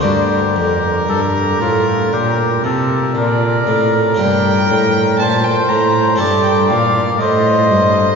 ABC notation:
X:1
M:4/4
L:1/16
Q:1/4=58
K:Gm
V:1 name="Violin"
B12 d4 | g4 a g b2 a g f2 e4 |]
V:2 name="Oboe"
G4 A G F2 G2 A2 B4 | B4 c4 d4 c4 |]
V:3 name="Harpsichord"
[B,DG]16 | [B,DG]8 [A,CA]8 |]
V:4 name="Harpsichord" clef=bass
G,,2 F,,2 G,,2 A,,2 B,,2 C,2 B,,2 A,,2 | G,,2 A,,2 B,,2 A,,2 G,,2 B,,2 A,,2 G,,2 |]
V:5 name="Cello" clef=bass
G,,2 F,,2 G,,2 A,,2 B,,2 C,2 B,,2 A,,2 | G,,2 A,,2 B,,2 A,,2 G,,2 B,,2 A,,2 G,,2 |]